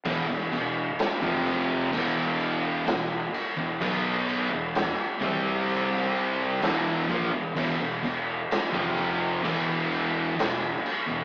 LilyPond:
<<
  \new Staff \with { instrumentName = "Distorted electric guitar" } { \clef bass \time 4/4 \key e \minor \tempo 4 = 64 <e, b,>16 <e, b,>16 <e, b,>8 r16 <f, c f>8. <e, b, e>4 <e, b,>8 r16 <e, b,>16 | <b, fis b>8. <e, b,>8 r16 <c g c'>4. <e, b, e>8 <ais, f>16 <e, b,>16 | <e, b,>16 <e, b,>16 <e, b,>8 r16 <f, c f>8. <e, b, e>4 <e, b,>8 r16 <e, b,>16 | }
  \new Staff \with { instrumentName = "Distorted electric guitar" } { \clef bass \time 4/4 \key e \minor <e, b,>16 <e, b,>16 <e, b,>8 r16 <f, c f>8. <e, b, e>4 <e, b,>8 r16 <e, b,>16 | <b, fis b>8. <e, b,>8 r16 <c g c'>4. <e, b, e>8 <ais, f>16 <e, b,>16 | <e, b,>16 <e, b,>16 <e, b,>8 r16 <f, c f>8. <e, b, e>4 <e, b,>8 r16 <e, b,>16 | }
  \new Staff \with { instrumentName = "Distorted electric guitar" } { \clef bass \time 4/4 \key e \minor <e, b,>16 <e, b,>16 <e, b,>8 r16 <f, c f>8. <e, b, e>4 <e, b,>8 r16 <e, b,>16 | <b, fis b>8. <e, b,>8 r16 <c g c'>4. <e, b, e>8 <ais, f>16 <e, b,>16 | <e, b,>16 <e, b,>16 <e, b,>8 r16 <f, c f>8. <e, b, e>4 <e, b,>8 r16 <e, b,>16 | }
  \new Staff \with { instrumentName = "Fingered electric bass" } { \clef bass \time 4/4 \key e \minor e,,16 e,,16 e,,8 r16 f,,8. e,,4 e,,8 r16 e,,16 | b,,8. e,,8 r16 c,4. e,,8 ais,,16 e,,16 | e,,16 e,,16 e,,8 r16 f,,8. e,,4 e,,8 r16 e,,16 | }
  \new DrumStaff \with { instrumentName = "Drums" } \drummode { \time 4/4 <cymc bd>16 sn16 cymc8 <cymc sn>16 bd16 cymc8 <cymc bd>16 sn16 cymc8 <cymc sn>8 cymc8 | <cymc bd>8 cymc8 <cymc sn>8 <cymc bd>8 cymc16 sn16 cymc8 <cymc sn>8 <cymc bd>8 | <cymc bd>16 sn16 cymc8 <cymc sn>16 bd16 cymc8 <cymc bd>8 cymc8 <cymc sn>8 cymc8 | }
>>